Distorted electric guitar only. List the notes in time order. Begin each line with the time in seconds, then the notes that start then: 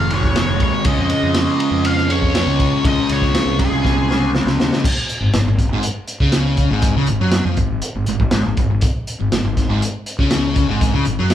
Already playing: D#3 G#3
0.11 G#2 D#3 G#3
0.36 G#2 D#3 G#3
0.86 C#3 G#3 C#4
2.10 C#3 G#3 C#4
2.35 C#3 G#3 C#4
2.85 C#3 G#3 C#4
4.09 C#3 G#3 C#4
4.35 C#3 G#3 C#4
5.23 G#2
5.34 G#2
5.48 G#2
5.73 G#2
6.21 C#3
6.71 G#2
6.97 C#3
7.10 G#2
7.21 F#3
7.46 F3
7.58 G#2
7.96 G#2
8.09 G#2
8.22 G#2
8.33 G#2
8.46 G#2
8.59 G#2
8.70 G#2
9.20 G#2
9.33 G#2
9.45 G#2
9.69 G#2
10.19 C#3
10.68 G#2
10.94 C#3
11.06 G#2
11.18 F#3